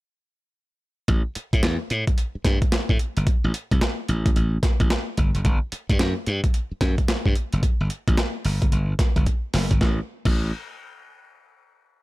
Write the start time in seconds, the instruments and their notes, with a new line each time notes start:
1.08 slap bass A1, kick, closed hi-hat
1.35 muted slap bass stroke, closed hi-hat
1.53 slap bass A2, kick, closed hi-hat
1.63 slap bass E2, snare, closed hi-hat
1.90 slap bass A2, closed hi-hat
2.07 kick, closed hi-hat
2.18 closed hi-hat
2.35 muted slap bass stroke
2.45 slap bass G2, kick, snare, closed hi-hat
2.62 kick, closed hi-hat
2.72 snare, closed hi-hat
2.89 slap bass A2, kick
2.99 closed hi-hat
3.17 slap bass G1, closed hi-hat
3.27 kick, closed hi-hat
3.44 slap bass A1
3.54 closed hi-hat
3.71 slap bass C2, kick, closed hi-hat
3.81 snare, closed hi-hat
4.08 slap bass A1, closed hi-hat
4.26 kick, closed hi-hat
4.36 slap bass A1, closed hi-hat
4.63 kick, snare, closed hi-hat
4.80 slap bass A1, kick, closed hi-hat
4.90 snare, closed hi-hat
5.17 slap bass G1, kick, closed hi-hat
5.35 slap bass F#1, closed hi-hat
5.45 slap bass G1, kick, closed hi-hat
5.72 muted slap bass stroke, closed hi-hat
5.89 slap bass G2, kick, closed hi-hat
5.99 slap bass F#2, snare, closed hi-hat
6.26 slap bass G2, closed hi-hat
6.44 kick, closed hi-hat
6.54 closed hi-hat
6.72 muted slap bass stroke
6.81 slap bass F#2, kick, snare, closed hi-hat
6.98 kick, closed hi-hat
7.08 snare, closed hi-hat
7.26 slap bass G2, kick
7.35 closed hi-hat
7.53 slap bass F#1, closed hi-hat
7.63 kick, closed hi-hat
7.80 slap bass G1
7.90 closed hi-hat
8.08 slap bass A1, kick, closed hi-hat
8.17 snare, closed hi-hat
8.45 slap bass G1, open hi-hat
8.62 kick, closed hi-hat
8.72 slap bass G1, closed hi-hat
8.99 kick, snare, closed hi-hat
9.16 slap bass G1, kick, closed hi-hat
9.26 kick, closed hi-hat
9.54 slap bass F#1, snare, open hi-hat
9.71 slap bass G1, kick, closed hi-hat
9.81 slap bass A1, kick, snare
10.25 slap bass A1, kick, crash